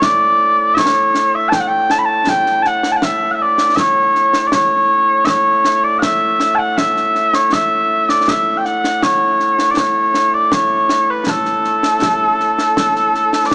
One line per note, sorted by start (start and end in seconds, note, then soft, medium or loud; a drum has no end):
0.00 13.55 A2 medium
0.00 13.55 A3 medium
0.00 0.74 D5 loud
0.00 concert bass drum medium
0.00 snare medium
0.74 1.35 C#5 medium
0.74 0.78 E5 medium
0.74 concert bass drum medium
0.74 snare medium
1.15 snare medium
1.35 1.49 E5 medium
1.49 1.53 A5 loud
1.49 concert bass drum medium
1.49 snare medium
1.53 1.60 G5 loud
1.60 1.68 F#5 medium
1.68 1.91 G5 loud
1.90 1.99 A5 loud
1.90 snare medium
1.99 2.05 B5 medium
2.05 2.29 A5 loud
2.27 2.62 G5 loud
2.27 concert bass drum medium
2.27 snare medium
2.46 snare soft
2.62 2.67 A5 medium
2.62 snare soft
2.67 2.92 F#5 medium
2.83 snare medium
2.92 2.96 A5 medium
2.96 3.03 F#5 medium
3.02 3.31 E5 loud
3.02 concert bass drum soft
3.02 snare medium
3.31 3.42 E5 medium
3.31 3.35 F#5 medium
3.42 3.75 D5 medium
3.58 snare medium
3.75 4.47 C#5 loud
3.75 3.79 E5 loud
3.75 concert bass drum medium
3.75 snare loud
4.15 snare soft
4.33 snare medium
4.47 4.54 D5 medium
4.52 5.25 C#5 loud
4.52 concert bass drum medium
4.52 snare loud
5.25 5.84 C#5 loud
5.25 5.29 E5 loud
5.25 concert bass drum medium
5.25 snare loud
5.65 snare medium
5.84 5.99 D5 medium
5.99 6.55 E5 loud
5.99 6.03 F#5 loud
5.99 concert bass drum medium
5.99 snare loud
6.40 snare medium
6.55 6.77 F#5 medium
6.55 6.59 A5 medium
6.77 7.34 E5 loud
6.77 concert bass drum medium
6.77 snare loud
6.97 snare soft
7.15 snare soft
7.33 7.53 C#5 medium
7.33 snare medium
7.53 8.09 E5 loud
7.53 concert bass drum medium
7.53 snare medium
8.09 8.29 D5 medium
8.09 snare medium
8.28 8.57 E5 medium
8.28 concert bass drum medium
8.28 snare medium
8.57 8.65 G5 medium
8.65 9.03 F#5 medium
8.65 snare soft
8.84 snare medium
9.03 9.71 C#5 medium
9.03 concert bass drum medium
9.03 snare medium
9.40 snare soft
9.59 snare medium
9.71 9.78 D5 medium
9.77 10.34 C#5 medium
9.77 concert bass drum medium
9.77 snare loud
10.14 snare medium
10.34 10.53 D5 medium
10.52 11.10 C#5 medium
10.52 concert bass drum medium
10.52 snare loud
10.89 snare medium
11.10 11.20 B4 medium
11.20 11.29 B4 medium
11.27 13.46 A4 medium
11.27 concert bass drum medium
11.27 snare loud
11.45 snare soft
11.64 snare soft
11.83 snare medium
12.02 concert bass drum medium
12.02 snare loud
12.40 snare soft
12.59 snare medium
12.77 concert bass drum medium
12.77 snare loud
12.96 snare soft
13.15 snare soft
13.33 snare medium
13.46 13.54 D5 medium
13.51 concert bass drum medium
13.51 snare loud